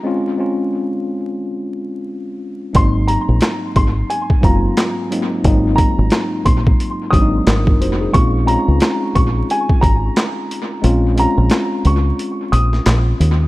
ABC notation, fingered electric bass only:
X:1
M:4/4
L:1/16
Q:"Swing 16ths" 1/4=89
K:Bbm
V:1 name="Fingered electric bass" clef=bass
z16 | A,,,3 B,,, z2 A,,,2 z2 G,,,2 z4 | A,,,3 A,,, z2 B,,,2 z2 A,,,2 A,,,2 F,,,2 | B,,,3 D,, z2 B,,,2 z2 A,,,2 z4 |
B,,,3 B,,, z2 D,,2 z2 B,,,2 B,,,2 E,,2 |]